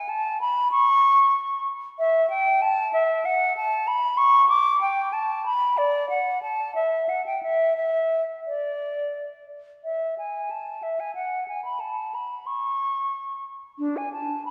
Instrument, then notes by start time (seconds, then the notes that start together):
flute
Already playing: G#5
0.09 A5
0.41 B5
0.71 C#6
1.99 E5
2.30 G5
2.62 A5
2.93 E5
3.25 F#5
3.57 A5
3.88 B5
4.17 C#6
4.49 D6
4.81 G5
5.13 A5
5.46 B5
5.77 D5
6.10 F#5
6.42 A5
6.75 E5
7.09 F#5
7.26 G5
7.43 E5
7.77 E5
8.47 D5
9.84 E5
10.18 G#5
10.51 A5
10.83 E5
11.00 G#5
11.15 F#5
11.48 G#5
11.65 B5
11.80 A5
12.15 B5
12.46 C#6
13.79 D4
13.97 G#5
14.13 A5
14.45 B5